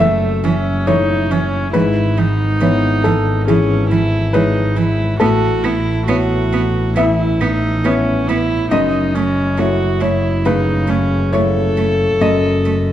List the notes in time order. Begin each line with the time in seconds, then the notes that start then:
Already playing: F#1 F#2 E4 A4 C#5
0.00 A3 E5
0.43 E3 C#4
0.87 E3 A3 D#4 E4 C#5
1.30 E3 C#4
1.73 G#1 G#2 E3 E4 B4
2.17 E3 D#4
2.61 E3 B3 E4 C#5
3.04 E3 A4
3.48 E3 C#4 G#4
3.90 E3 E4
4.33 E3 G#3 D#4 E4 B4 C#5
4.76 E3 E4
5.20 A1 A2 B3 F#4 A4
5.63 B3 E4
6.07 B3 E4 F#4 C#5
6.53 B3
6.96 E3 B3 E4 E5
7.40 B3 D#4
7.84 B3 C#4 E4 C#5
8.27 B3 E4
8.71 F#1 F#2 A3 D#4 D#5
9.14 A3 C#4
9.58 A3 E4 F#4 C#5
10.01 A3 E4 C#5
10.45 C#3 A3 D#4 B4
10.88 A3 C#4
11.33 A3 E4 A4 C#5
11.77 A3
12.21 F#1 F#2 A3 D#5
12.65 A3